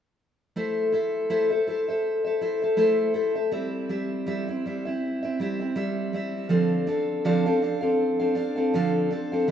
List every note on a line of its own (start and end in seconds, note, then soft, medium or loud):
0.56 0.93 A3 medium
0.56 0.91 E4 medium
0.56 0.92 A4 medium
0.56 0.93 C5 medium
0.56 0.93 E5 medium
0.92 1.29 E4 medium
0.92 1.29 A4 medium
0.92 1.30 C5 medium
0.92 1.29 E5 medium
1.30 1.51 A3 medium
1.30 1.51 E4 medium
1.30 1.51 A4 medium
1.30 1.50 C5 medium
1.30 1.49 E5 medium
1.51 1.67 A4 soft
1.51 1.68 C5 soft
1.51 1.67 E5 soft
1.67 1.88 E4 soft
1.67 1.88 A4 soft
1.67 1.88 C5 soft
1.67 1.87 E5 soft
1.88 2.26 A4 soft
1.88 2.25 C5 soft
1.88 2.23 E5 soft
2.25 2.41 A4 soft
2.25 2.41 C5 soft
2.25 2.42 E5 soft
2.41 2.62 E4 medium
2.41 2.62 A4 soft
2.41 2.63 C5 medium
2.41 2.61 E5 medium
2.62 2.77 A4 soft
2.62 2.77 C5 soft
2.62 2.77 E5 soft
2.77 3.15 A3 medium
2.77 3.13 E4 medium
2.77 3.14 A4 medium
2.77 3.15 C5 medium
2.77 3.15 E5 medium
3.14 3.35 E4 medium
3.14 3.36 A4 medium
3.14 3.35 C5 medium
3.14 3.34 E5 medium
3.35 3.52 A4 soft
3.35 3.52 C5 soft
3.35 3.52 E5 soft
3.51 3.88 G3 medium
3.51 3.89 C4 medium
3.51 3.89 E4 medium
3.51 3.89 E5 medium
3.89 4.25 G3 medium
3.89 4.26 C4 medium
3.89 4.26 E4 medium
3.89 4.27 E5 medium
4.26 4.47 G3 medium
4.26 4.48 C4 medium
4.26 4.48 E4 medium
4.26 4.47 E5 medium
4.48 4.65 C4 soft
4.48 4.65 E4 soft
4.48 4.65 E5 soft
4.66 4.86 G3 soft
4.66 4.86 C4 soft
4.66 4.85 E4 soft
4.66 4.84 E5 soft
4.85 5.24 C4 soft
4.85 5.23 E4 soft
4.85 5.21 E5 soft
5.23 5.40 C4 soft
5.23 5.40 E4 soft
5.23 5.39 E5 soft
5.40 5.60 G3 medium
5.40 5.60 C4 medium
5.40 5.60 E4 medium
5.40 5.58 E5 medium
5.60 5.75 C4 soft
5.60 5.75 E4 soft
5.60 5.76 E5 soft
5.76 6.12 G3 medium
5.76 6.13 C4 medium
5.76 6.13 E4 medium
5.76 6.14 E5 medium
6.13 6.49 G3 medium
6.13 6.49 C4 medium
6.13 6.50 E4 medium
6.13 6.50 E5 medium
6.49 6.87 D3 medium
6.49 6.87 F3 medium
6.49 6.87 C4 medium
6.49 6.86 D4 medium
6.49 6.87 A4 medium
6.49 6.87 F5 medium
6.87 7.25 C4 medium
6.87 7.24 D4 medium
6.87 7.24 A4 medium
6.87 7.24 F5 medium
7.25 7.45 D3 medium
7.25 7.45 F3 medium
7.25 7.46 C4 medium
7.25 7.45 D4 medium
7.25 7.45 A4 medium
7.25 7.45 F5 medium
7.46 7.62 C4 soft
7.46 7.61 D4 soft
7.46 7.62 A4 soft
7.46 7.62 F5 soft
7.62 7.81 C4 soft
7.62 7.82 D4 soft
7.62 7.81 A4 soft
7.62 7.80 F5 medium
7.81 8.20 C4 soft
7.81 8.20 D4 soft
7.81 8.19 A4 soft
7.81 8.18 F5 soft
8.20 8.35 C4 soft
8.20 8.34 D4 soft
8.20 8.35 A4 soft
8.20 8.36 F5 medium
8.35 8.56 C4 medium
8.35 8.56 D4 medium
8.35 8.56 A4 medium
8.35 8.55 F5 medium
8.56 8.74 C4 soft
8.56 8.74 D4 soft
8.56 8.74 A4 soft
8.56 8.73 F5 soft
8.74 9.11 D3 medium
8.74 9.11 F3 medium
8.74 9.11 C4 medium
8.74 9.09 D4 medium
8.74 9.11 A4 medium
8.74 9.11 F5 medium
9.11 9.32 C4 medium
9.11 9.31 D4 medium
9.11 9.32 A4 medium
9.11 9.31 F5 medium
9.32 9.48 C4 soft
9.32 9.48 D4 soft
9.32 9.49 A4 soft
9.32 9.48 F5 soft
9.48 9.51 D3 medium
9.48 9.51 E3 medium